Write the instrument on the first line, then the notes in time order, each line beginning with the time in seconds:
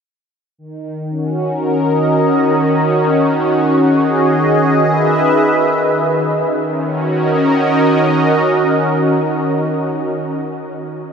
analog synth pad
0.58 D#3
1.10 C#4 F#4
1.37 A#4
1.68 D#5
3.86 G#4
4.00 D#5
4.84 B4 E5
6.47 D#3
6.64 C#4
6.78 F#4
6.94 A#4
7.10 D#5